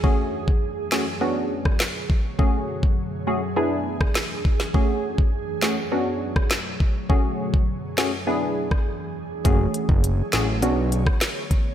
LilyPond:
<<
  \new Staff \with { instrumentName = "Ambient pad" } { \time 4/4 \key fis \minor \tempo 4 = 102 << { gis'2 r2 | gis'1~ | gis'2 r2 | gis'1 |
r1 | } \\ { r2 fis2~ | fis2 r2 | fis1~ | fis2 r2 |
cis''1 | } >> }
  \new Staff \with { instrumentName = "Synth stab" } { \time 4/4 \key fis \minor <a cis' fis' gis'>4 r8 <a cis' fis' gis'>16 r16 <b cis' d' fis'>2 | <a cis' fis' gis'>4 r8 <a cis' fis' gis'>16 r16 <b d' e' gis'>2 | <a cis' fis' gis'>4 r8 <a cis' fis' gis'>16 r16 <b cis' d' fis'>2 | <a cis' fis' gis'>4 r8 <a cis' fis' gis'>16 r16 <b d' e' gis'>2 |
<a cis' fis' gis'>4 r8 <a cis' fis' gis'>16 r16 <b cis' d' fis'>2 | }
  \new Staff \with { instrumentName = "Analog synth bass" } { \clef bass \time 4/4 \key fis \minor r1 | r1 | r1 | r1 |
fis,,8 r16 fis,,8. a,,8 b,,4 r4 | }
  \new DrumStaff \with { instrumentName = "Drums" } \drummode { \time 4/4 bd8. bd16 r8 <hc sn>8 r8. <bd ss>16 <hc sn>8 bd8 | bd8. bd16 r4 r8. <bd ss>16 <hc sn>8 bd16 sn16 | bd8. bd16 r8 <hc sn>8 r8. <bd ss>16 <hc sn>8 bd8 | bd8. bd16 r8 <hc sn>8 r8. <bd ss>16 r4 |
<hh bd>8 hh16 bd16 hh8 <hc hh sn>8 hh8 hh16 <bd ss>16 <hc hh sn>8 <hh bd>8 | }
>>